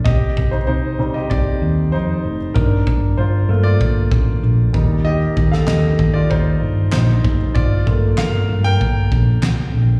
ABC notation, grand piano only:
X:1
M:4/4
L:1/16
Q:1/4=96
K:Gm
V:1 name="Grand piano"
[Ge]3 [Ec] [Ec]3 [Ge] [Gd]4 [Ec]3 z | [DB]4 [Fc]3 [Fd]8- [Fd] | [Ge]3 [Af] [Ge]3 [Fd] [Ec]4 [Ec]3 z | [Fd]4 [Bf]3 [Bg]8- [Bg] |]
V:2 name="Grand piano"
z6 [G,CE]8- [G,CE]2 | z6 [A,B,F]6 z2 [G,B,E]2 | z16 | z2 [A,B,F]2 z12 |]